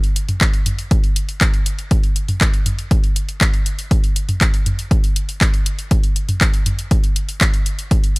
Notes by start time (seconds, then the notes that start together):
0.04 closed hi-hat
0.16 closed hi-hat
0.29 closed hi-hat, mid tom
0.41 kick, clap, closed hi-hat
0.54 closed hi-hat
0.66 closed hi-hat, mid tom
0.79 closed hi-hat
0.91 kick, closed hi-hat
1.04 closed hi-hat
1.16 closed hi-hat
1.29 closed hi-hat
1.41 kick, clap, closed hi-hat
1.54 closed hi-hat
1.66 closed hi-hat
1.79 closed hi-hat
1.91 kick, closed hi-hat
2.04 closed hi-hat
2.16 closed hi-hat
2.28 closed hi-hat, mid tom
2.41 kick, clap, closed hi-hat
2.54 closed hi-hat
2.66 closed hi-hat, mid tom
2.79 closed hi-hat
2.91 kick, closed hi-hat
3.04 closed hi-hat
3.16 closed hi-hat
3.29 closed hi-hat
3.41 kick, clap, closed hi-hat
3.54 closed hi-hat
3.66 closed hi-hat
3.79 closed hi-hat
3.91 kick, closed hi-hat
4.04 closed hi-hat
4.16 closed hi-hat
4.29 closed hi-hat, mid tom
4.41 kick, clap, closed hi-hat
4.54 closed hi-hat
4.66 closed hi-hat, mid tom
4.79 closed hi-hat
4.91 kick, closed hi-hat
5.04 closed hi-hat
5.16 closed hi-hat
5.29 closed hi-hat
5.41 kick, clap, closed hi-hat
5.54 closed hi-hat
5.66 closed hi-hat
5.79 closed hi-hat
5.91 kick, closed hi-hat
6.04 closed hi-hat
6.16 closed hi-hat
6.29 closed hi-hat, mid tom
6.41 kick, clap, closed hi-hat
6.54 closed hi-hat
6.66 closed hi-hat, mid tom
6.79 closed hi-hat
6.91 kick, closed hi-hat
7.04 closed hi-hat
7.16 closed hi-hat
7.29 closed hi-hat
7.41 kick, clap, closed hi-hat
7.54 closed hi-hat
7.66 closed hi-hat
7.79 closed hi-hat
7.91 kick, closed hi-hat
8.04 closed hi-hat
8.16 closed hi-hat